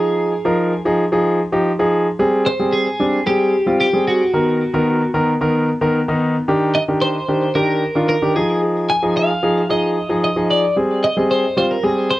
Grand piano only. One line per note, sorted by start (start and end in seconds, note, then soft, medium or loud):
0.00 0.32 F3 medium
0.00 0.32 D#4 medium
0.00 0.32 G#4 medium
0.45 0.72 F3 medium
0.45 0.72 D#4 medium
0.45 0.72 A#4 loud
0.85 1.03 F3 medium
0.85 1.03 D#4 medium
0.85 1.04 G#4 loud
1.12 1.39 F3 medium
1.12 1.39 D#4 medium
1.12 1.39 G#4 loud
1.52 1.70 F3 medium
1.52 1.70 D#4 medium
1.52 1.70 G4 loud
1.79 2.06 F3 medium
1.79 2.06 D#4 medium
1.79 2.06 G#4 loud
2.19 2.46 G3 medium
2.19 2.46 C4 medium
2.19 2.46 G#4 loud
2.59 2.86 G3 medium
2.59 2.86 C4 medium
2.59 2.87 G#4 medium
3.00 3.18 G3 medium
3.00 3.18 C4 medium
3.00 3.18 D4 medium
3.26 3.53 G3 medium
3.26 3.53 C4 medium
3.26 3.53 G#4 medium
3.66 3.84 G3 medium
3.66 3.84 C4 medium
3.66 3.85 F4 medium
3.93 4.20 G3 medium
3.93 4.20 C4 medium
3.93 4.20 G#4 medium
4.33 4.60 D#3 medium
4.33 4.61 B3 medium
4.33 4.61 A#4 medium
4.74 5.01 D#3 medium
4.74 5.01 B3 medium
4.74 5.01 A#4 loud
5.14 5.32 D#3 medium
5.14 5.32 B3 medium
5.14 5.32 A#4 loud
5.41 5.68 D#3 medium
5.41 5.68 B3 medium
5.41 5.68 A#4 loud
5.81 5.99 D#3 medium
5.81 5.99 B3 medium
5.81 5.99 A#4 loud
6.08 6.35 D#3 medium
6.08 6.35 B3 medium
6.08 6.35 D#4 medium
6.48 6.75 D#3 medium
6.48 6.75 D4 medium
6.48 6.75 G4 loud
6.88 7.15 D#3 medium
6.88 7.15 D4 medium
6.88 7.15 G4 medium
7.28 7.46 D#3 medium
7.28 7.46 D4 medium
7.28 7.46 G4 medium
7.55 7.82 D#3 medium
7.55 7.82 D4 medium
7.55 7.82 G4 medium
7.95 8.13 D#3 medium
7.95 8.13 D4 medium
7.95 8.13 F4 medium
8.22 8.36 D#3 medium
8.22 8.36 D4 medium
8.22 8.36 G4 medium
8.36 8.89 F3 medium
8.36 8.89 D#4 medium
8.36 8.89 G#4 medium
9.03 9.29 F3 medium
9.03 9.29 D#4 medium
9.03 9.30 G#4 medium
9.43 9.61 F3 medium
9.43 9.61 D#4 medium
9.43 9.61 G#4 medium
9.70 9.96 F3 medium
9.70 9.96 D#4 medium
9.70 9.96 G#4 medium
10.09 10.27 F3 medium
10.09 10.28 D#4 medium
10.09 10.28 G#4 medium
10.36 10.63 F3 medium
10.36 10.63 D#4 medium
10.36 10.63 G#4 medium
10.76 11.03 G3 medium
10.76 11.03 C4 medium
10.76 11.03 G#4 medium
11.17 11.43 G3 medium
11.17 11.44 C4 medium
11.17 11.44 G#4 medium
11.57 11.75 G3 medium
11.57 11.75 C4 medium
11.57 11.75 F4 medium
11.83 12.10 G3 medium
11.83 12.10 C4 medium
11.83 12.10 G#4 medium